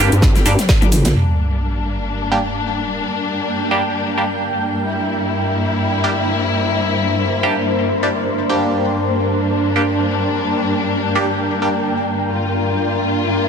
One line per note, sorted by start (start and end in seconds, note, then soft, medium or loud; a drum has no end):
0.00 0.10 G2 medium
0.00 1.11 D3 medium
0.00 1.11 G3 medium
0.00 1.14 C4 medium
0.12 0.33 G2 loud
0.12 closed hi-hat medium
0.12 shaker soft
0.22 kick loud
0.22 snare medium
0.22 closed hi-hat medium
0.22 shaker soft
0.35 0.44 G1 loud
0.35 snare soft
0.35 closed hi-hat soft
0.35 high tom medium
0.35 shaker soft
0.45 0.57 G2 loud
0.45 0.52 G3 medium
0.45 0.52 A#3 medium
0.45 0.52 D4 medium
0.45 0.52 G4 medium
0.45 closed hi-hat medium
0.45 open hi-hat loud
0.45 shaker medium
0.59 snare soft
0.59 closed hi-hat medium
0.59 mid tom medium
0.59 shaker soft
0.69 kick loud
0.69 snare loud
0.69 snare medium
0.69 closed hi-hat loud
0.69 shaker soft
0.82 1.03 G1 loud
0.82 closed hi-hat soft
0.82 mid tom medium
0.82 shaker soft
0.92 snare soft
0.92 closed hi-hat medium
0.92 mid tom medium
0.92 open hi-hat medium
0.92 shaker medium
1.05 1.14 A#1 loud
1.05 snare loud
1.05 closed hi-hat medium
1.05 mid tom medium
1.05 shaker soft
1.15 13.48 G2 medium
1.15 13.48 G3 medium
1.15 13.48 A#3 medium
1.15 13.48 D4 medium
1.15 4.86 D4 medium
1.15 sub drop medium
1.21 13.48 A#4 medium
1.87 5.62 G5 medium
2.32 2.38 G3 medium
2.32 2.38 A#3 medium
2.32 2.38 D4 medium
2.32 2.38 G4 loud
3.71 3.82 G3 medium
3.71 3.82 A#3 medium
3.71 3.82 D4 medium
3.71 3.82 G4 loud
4.17 4.24 G3 medium
4.17 4.24 A#3 medium
4.17 4.24 D4 medium
4.17 4.24 G4 medium
4.87 8.58 E4 medium
5.60 9.34 C5 medium
6.04 6.10 G3 medium
6.04 6.10 A#3 medium
6.04 6.10 D4 medium
6.04 6.10 G4 loud
7.43 7.54 G3 medium
7.43 7.54 A#3 medium
7.43 7.54 D4 medium
7.43 7.54 G4 loud
8.03 8.08 G3 medium
8.03 8.08 A#3 medium
8.03 8.08 D4 medium
8.03 8.08 G4 medium
8.49 9.73 G3 medium
8.49 9.73 A#3 medium
8.49 9.73 D4 medium
8.49 9.73 G4 medium
8.60 12.31 D4 medium
9.32 13.06 G5 medium
9.76 9.82 G3 medium
9.76 9.82 A#3 medium
9.76 9.82 D4 medium
9.76 9.82 G4 loud
11.15 11.26 G3 medium
11.15 11.26 A#3 medium
11.15 11.26 D4 medium
11.15 11.26 G4 loud
11.62 11.69 G3 medium
11.62 11.69 A#3 medium
11.62 11.69 D4 medium
11.62 11.69 G4 medium
12.32 13.48 F4 medium
13.04 13.48 C6 medium